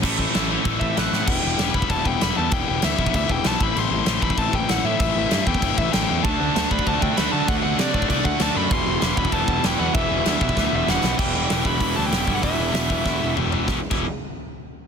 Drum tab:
CC |x---x---x---x---|x---x---x---x---|x---x---x---x---|x---x---x---x---|
HH |----------------|----------------|----------------|----------------|
SD |----o-------o-o-|----o-------o---|----o-------o---|----o-------o---|
T2 |----------------|----------------|----------------|----------------|
FT |----------------|----------------|----------------|----------------|
BD |o-o-----o-o-----|o-----ooo-o-----|o-----ooo-o---o-|------ooo-o-----|

CC |x---x---x---x---|x---x---x---x---|x---x---x---x---|x---x---x---x---|
HH |----------------|----------------|----------------|----------------|
SD |----o-------o---|----o-------o---|----o-------o---|----o-------o---|
T2 |----------------|----------------|----------------|----------------|
FT |----------------|----------------|----------------|----------------|
BD |o-----ooo-o-----|o-----ooo-o-----|o-----ooo-o-----|o-----ooo-o-----|

CC |x---x-----------|x---------------|----------------|---x------------|
HH |----------------|----o---o---o---|o---o-----------|----------------|
SD |----o---o---o-o-|----o-------o---|----o---o-------|o---------------|
T2 |----------------|----------------|------------o---|----------------|
FT |----------------|----------------|--------------o-|----------------|
BD |o-----ooo-------|o-----o-o-----o-|o-----o-o-------|o--o------------|